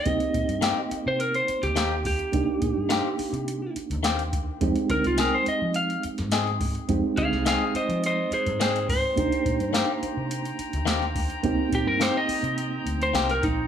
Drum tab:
HH |xxxxx-x-xxxxx-ox|x-x-x-oxx-xxxxx-|xxxxx-x-xxxxx-ox|x-x-x-xxx-xxxxo-|
SD |----o------oo---|----o-------o---|----o------ooo--|---oo-------o---|
BD |o-o-----------o-|o-o-----------o-|o-o-----------o-|o-o-----------o-|

HH |xxxxx-x-xxxxx-ox|x-x-x-oxx-xxxxx-|
SD |----o-------oo--|----o-------oo--|
BD |o-o-----------o-|o-o-----------o-|